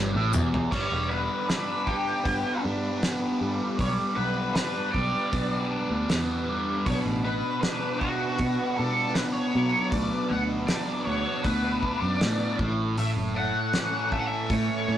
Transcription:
Already playing: fingered electric bass G1, distorted electric guitar G2, string machine B3 E4 F#4 G4 C#5
0.13 fingered electric bass A1, distorted electric guitar A2
0.33 fingered electric bass E1, distorted electric guitar E2, mid tom, maracas
0.54 floor tom
0.71 fingered electric bass G1, distorted electric guitar G3, string machine D4 G4 B4 B5, lead electric guitar C#5, kick, crash
0.92 fingered electric bass E1
1.09 distorted electric guitar B3, lead electric guitar B4
1.48 distorted electric guitar D4, lead electric guitar B4, snare, open hi-hat
1.86 distorted electric guitar G4, lead electric guitar G4, kick
2.24 fingered electric bass G2, distorted electric guitar B3, kick, open hi-hat
2.63 fingered electric bass G2, distorted electric guitar D4
3.01 distorted electric guitar B3, snare, open hi-hat
3.41 fingered electric bass G2, distorted electric guitar G3
3.79 fingered electric bass B1, distorted electric guitar G3, lead electric guitar C#5, kick, open hi-hat
4.16 fingered electric bass B1, distorted electric guitar B3, lead electric guitar B4
4.54 distorted electric guitar D4, lead electric guitar B4, snare, open hi-hat
4.92 fingered electric bass B1, distorted electric guitar G4, lead electric guitar D5, kick
5.32 fingered electric bass B1, distorted electric guitar B3, kick, open hi-hat
5.71 distorted electric guitar D4
5.90 fingered electric bass D2
6.09 fingered electric bass E2, distorted electric guitar B3, snare, open hi-hat
6.48 distorted electric guitar G3
6.86 fingered electric bass B1, distorted electric guitar B2, lead electric guitar C#5, string machine F#5 B5, kick, open hi-hat
7.06 fingered electric bass A1
7.24 distorted electric guitar B3, lead electric guitar B4
7.61 distorted electric guitar D4, lead electric guitar B4, snare, open hi-hat
7.99 lead electric guitar F#4, distorted electric guitar F#4, kick
8.38 fingered electric bass B2, distorted electric guitar B3, kick, open hi-hat
8.77 fingered electric bass B2, distorted electric guitar D4, lead electric guitar A4
9.14 distorted electric guitar B3, lead electric guitar B4, snare, open hi-hat
9.32 lead electric guitar C#5
9.55 fingered electric bass B2, distorted electric guitar F#3
9.90 fingered electric bass D2, distorted electric guitar B2, lead electric guitar D5, string machine E5, kick, open hi-hat
10.28 fingered electric bass D2, lead electric guitar F#5
10.33 distorted electric guitar B3
10.67 distorted electric guitar D4, lead electric guitar D5, snare, open hi-hat
11.04 fingered electric bass D2, distorted electric guitar F#4, lead electric guitar C#5
11.43 fingered electric bass D2, distorted electric guitar B3, lead electric guitar B4, kick, open hi-hat
11.83 distorted electric guitar D4, kick
12.00 fingered electric bass F#2, lead electric guitar D5
12.21 fingered electric bass A2, distorted electric guitar B3, snare, open hi-hat
12.59 fingered electric bass A1, distorted electric guitar A2, string machine A4 C#5 C#6, kick
12.98 distorted electric guitar A2, lead electric guitar E5, open hi-hat
13.16 fingered electric bass F#1
13.35 distorted electric guitar A3, lead electric guitar F#5
13.73 distorted electric guitar C#4, snare, open hi-hat
14.11 distorted electric guitar A4, lead electric guitar E5, kick
14.20 lead electric guitar F#5
14.27 lead electric guitar E5
14.50 fingered electric bass A2, distorted electric guitar A3, lead electric guitar C#5, kick, open hi-hat
14.88 fingered electric bass A2, distorted electric guitar C#4

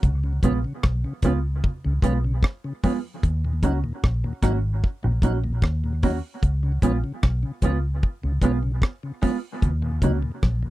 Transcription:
0.03 fingered electric bass C#2, kick, hi-hat pedal, low conga
0.24 tonewheel organ C#3
0.43 fingered electric bass A#1, tonewheel organ F3 B3 C#4, clean electric guitar G#3 B3 F4, kick, closed hi-hat, low conga
0.64 tonewheel organ C#3
0.83 fingered electric bass B1, kick, cross-stick, high conga
1.04 tonewheel organ C#3
1.22 fingered electric bass C#2, tonewheel organ F3 B3 C#4, clean electric guitar G#3 B3 F4, kick, closed hi-hat, low conga
1.64 kick, low conga
1.85 fingered electric bass C#2, tonewheel organ C#3
2.02 fingered electric bass B1, tonewheel organ F3 B3 C#4, clean electric guitar G#3 B3 F4, kick, closed hi-hat
2.25 tonewheel organ C#3
2.43 kick, cross-stick
2.64 tonewheel organ C#3
2.83 tonewheel organ F3 B3 C#4, clean electric guitar G#3 B3 F4, kick, open hi-hat, high conga
3.23 fingered electric bass D#2, kick, hi-hat pedal
3.44 tonewheel organ D#2 A#2
3.63 fingered electric bass C#2, tonewheel organ F#3 C#4 D#4, clean electric guitar A#3 C#4 F#4, kick, closed hi-hat
3.84 tonewheel organ D#2 A#2
4.04 fingered electric bass A#1, kick, cross-stick
4.24 tonewheel organ D#2 A#2
4.43 fingered electric bass G#1, tonewheel organ F#3 C#4 D#4, clean electric guitar A#3 C#4 F#4, kick, cross-stick, closed hi-hat
4.84 kick
5.03 fingered electric bass A#1, tonewheel organ D#2 A#2, muted clean electric guitar stroke
5.22 fingered electric bass A#1, tonewheel organ F#3 C#4 D#4, clean electric guitar A#3 C#4 F#4, kick, closed hi-hat
5.44 tonewheel organ D#2 A#2
5.62 fingered electric bass D#2, kick, cross-stick
5.84 tonewheel organ D#2 A#2
6.03 tonewheel organ F#3 C#4 D#4, clean electric guitar A#3 C#4 F#4, kick, open hi-hat
6.43 fingered electric bass C#2, kick, hi-hat pedal
6.63 tonewheel organ C#3
6.82 fingered electric bass A#1, tonewheel organ F3 B3 C#4, clean electric guitar G#3 B3 F4, kick, closed hi-hat
7.04 tonewheel organ C#3
7.23 fingered electric bass B1, kick, cross-stick
7.43 tonewheel organ C#3
7.62 fingered electric bass C#2, tonewheel organ F3 B3 C#4, clean electric guitar G#3 B3 F4, kick, closed hi-hat
8.03 kick
8.23 fingered electric bass C#2, tonewheel organ C#3
8.42 fingered electric bass B1, tonewheel organ F3 B3 C#4, clean electric guitar G#3 B3 F4, kick, closed hi-hat
8.63 tonewheel organ C#3
8.82 kick, cross-stick
9.03 tonewheel organ C#3
9.22 tonewheel organ F3 B3 C#4, clean electric guitar G#3 B3 F4, kick, open hi-hat
9.62 fingered electric bass D#2, kick, hi-hat pedal, low conga
9.82 tonewheel organ D#2 A#2
10.02 fingered electric bass C#2, tonewheel organ F#3 C#4 D#4, clean electric guitar A#3 C#4 F#4, kick, closed hi-hat, low conga
10.22 tonewheel organ D#2 A#2
10.43 fingered electric bass A#1, kick, cross-stick, high conga
10.63 tonewheel organ D#2 A#2

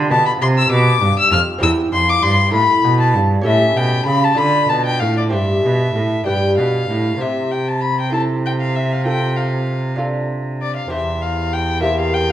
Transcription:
Already playing: cello D3, lute F4 G4
0.10 cello B2, lute B2, violin A5
0.26 violin B5
0.40 cello C3, lute C3, violin C6
0.58 violin E6
0.70 cello B2, lute B2, violin D6
1.01 cello G2, lute G2
1.19 violin E6
1.31 cello F2, lute F2, violin F6
1.58 cello E2, lute C4 E4 G4
1.63 lute E2, violin E6
1.92 lute F2, cello F2, violin C6
2.09 violin D6
2.22 lute G2, cello G2, violin C6
2.49 lute C4 E4 A4
2.53 lute A2, cello A2, violin B5
2.84 cello B2, lute B2
3.00 violin A5
3.14 cello G2, lute G2
3.41 cello A2, lute C#4 G4 A4
3.46 lute A2, violin E5
3.75 cello B2, lute B2, violin G5
4.06 cello C#3, lute C#3, violin B5
4.24 violin A5
4.34 cello D3, lute D4 F4 A4, violin B5
4.38 lute D3
4.69 cello B2, lute B2, violin A5
4.86 violin G5
5.00 lute A2, cello A2, violin F5
5.17 violin D5
5.29 cello G2, lute C4 G4 C5, violin E5
5.34 lute G2
5.64 cello B2, lute B2
5.95 cello A2, lute A2
6.24 cello G2, lute D4 G4 B4, violin G5
6.29 lute G2
6.58 cello B2, lute B2, violin F5
6.90 cello A2, lute A2
7.18 lute C4 G4 C5, violin E5
7.22 cello C3, lute C3
7.52 violin G5
7.68 violin A5
7.81 violin B5
8.01 violin G5
8.10 lute C4 E4 A4, violin A5
8.46 violin G5
8.60 violin F5
8.76 violin E5
8.92 violin F5
9.04 lute C4 F4 A4, violin G5
9.36 violin F5
9.96 lute D4 F4 A4
10.62 violin D5
10.76 violin F5
10.88 lute C4 G4 C5, violin E5
10.92 cello E2, lute E2
11.22 violin F5
11.53 violin G5
11.80 lute A#3 G4 C5, violin E5
11.99 violin F5
12.14 violin G5

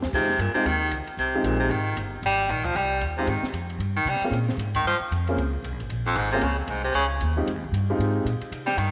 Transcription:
0.02 upright bass E2, snare
0.13 upright bass F2, baritone saxophone C3, grand piano G#3 C4 D#4 F4 G4, kick, crash
0.29 snare
0.38 upright bass G2, baritone saxophone A#2, hi-hat pedal, ride
0.54 baritone saxophone C3, grand piano G#3 C4 D#4 F4 G4, muted upright bass stroke, ride
0.65 upright bass D#2, baritone saxophone D#3, ride
0.91 upright bass C#2, hi-hat pedal, ride
1.07 muted upright bass stroke, ride
1.17 upright bass C2, baritone saxophone C3, ride
1.35 grand piano G#3 C4 D#4 F4 G4
1.43 upright bass A#1, baritone saxophone A#2, hi-hat pedal, ride
1.59 baritone saxophone C3
1.71 upright bass G#1, baritone saxophone D#3, ride
1.97 upright bass G1, hi-hat pedal, ride
2.23 upright bass G#1, baritone saxophone G3, ride
2.49 upright bass A#1, baritone saxophone D#3, hi-hat pedal, ride
2.65 baritone saxophone F3, kick, ride
2.75 upright bass C2, baritone saxophone G3, ride
3.01 upright bass D#2, hi-hat pedal, ride
3.17 baritone saxophone C3, grand piano G#3 C4 D#4 F4 G4
3.27 upright bass G#2, baritone saxophone D#3, ride
3.42 muted upright bass stroke, snare
3.53 upright bass F2, hi-hat pedal, ride
3.70 ride
3.79 upright bass G2, ride
3.96 baritone saxophone D#3
4.05 upright bass C3, baritone saxophone G3, hi-hat pedal, ride
4.16 snare
4.21 grand piano A#3 C4 C#4 F4 G#4, muted upright bass stroke, snare, ride
4.31 upright bass A#2, ride
4.49 snare
4.57 upright bass G#2, hi-hat pedal, ride
4.75 baritone saxophone D#3, kick, ride
4.84 upright bass G2, baritone saxophone F3
5.00 muted upright bass stroke
5.11 upright bass F2, hi-hat pedal, ride
5.27 grand piano A#3 C4 C#4 F4 G#4, ride
5.37 upright bass C#2, ride
5.63 upright bass C2, hi-hat pedal, ride
5.72 upright bass A#1
5.80 upright bass G#1, ride
5.89 upright bass A#1, ride
6.07 baritone saxophone F2
6.16 upright bass G#1, baritone saxophone G#2, hi-hat pedal, ride
6.31 baritone saxophone C3, grand piano A#3 C4 C#4 F4 G#4, ride
6.41 upright bass C#2, baritone saxophone C#3, ride
6.59 baritone saxophone F2
6.68 upright bass C2, baritone saxophone G#2, hi-hat pedal, ride
6.84 baritone saxophone C3
6.94 upright bass C#2, baritone saxophone C#3, ride
7.21 upright bass D#2, hi-hat pedal, ride
7.37 grand piano G#3 C4 D#4 F4 G4
7.47 upright bass F2, ride
7.56 upright bass D#2
7.64 upright bass C2
7.72 upright bass G2, hi-hat pedal, ride
7.90 grand piano G#3 C4 D#4 F4 G4
7.99 upright bass G#2, ride
8.25 upright bass A#2, hi-hat pedal, ride
8.41 muted upright bass stroke, ride
8.52 upright bass C3, ride
8.66 baritone saxophone G3, snare
8.77 upright bass G2, baritone saxophone D#3, hi-hat pedal, ride

